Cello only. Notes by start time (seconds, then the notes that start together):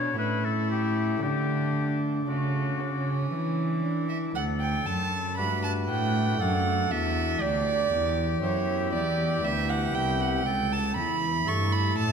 Already playing: B2
0.19 A2
1.23 D3
2.28 C#3
3.32 E3
4.36 D2
4.87 F#2
5.39 G2
5.89 A2
6.40 F#2
6.91 E2
7.40 D2
7.91 E2
8.42 F#2
8.92 E2
9.43 D2
9.93 C2
10.45 C#2
10.95 E2
11.45 G2
11.96 A2